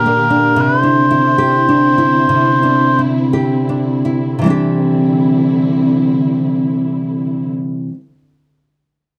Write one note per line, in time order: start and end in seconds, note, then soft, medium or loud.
0.00 0.67 A#2 medium
0.00 4.39 D3 soft
0.00 0.54 A#3 medium
0.00 0.30 D4 soft
0.00 0.54 G4 medium
0.00 1.38 G4 soft
0.00 0.61 A#4 medium
0.06 0.67 A#3 soft
0.30 0.83 D4 soft
0.56 2.28 C3 medium
0.56 4.40 C4 soft
0.56 4.40 E4 medium
0.61 0.80 B4 medium
0.80 1.68 D4 soft
0.80 3.00 C5 medium
1.11 1.98 E4 soft
1.38 3.33 G4 soft
1.69 2.63 D4 soft
1.98 2.98 E4 soft
2.29 4.37 C3 soft
2.63 3.69 D4 soft
2.99 4.04 E4 soft
3.33 4.50 G4 soft
3.69 4.45 D4 soft
4.05 4.47 E4 soft
4.39 7.89 C3 soft
4.39 7.92 E3 soft
4.44 7.50 D3 soft
4.44 7.94 G3 soft
4.44 7.50 C4 soft
4.44 7.96 C4 soft
4.44 7.97 D4 soft
4.44 7.50 E4 soft
4.50 8.00 G4 soft